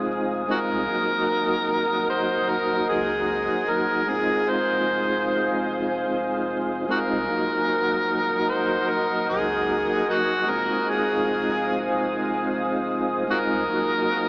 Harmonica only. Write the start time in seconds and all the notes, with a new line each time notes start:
0.51 F#4 A#4
2.10 C5
2.50 A#4
2.90 G#4
3.70 A#4
4.09 G#4
4.49 C5
6.91 F#4 A#4
8.50 C5
8.90 A#4
9.30 G#4
10.10 D#4 F#4
10.50 A#4
10.90 G#4
13.31 F#4 A#4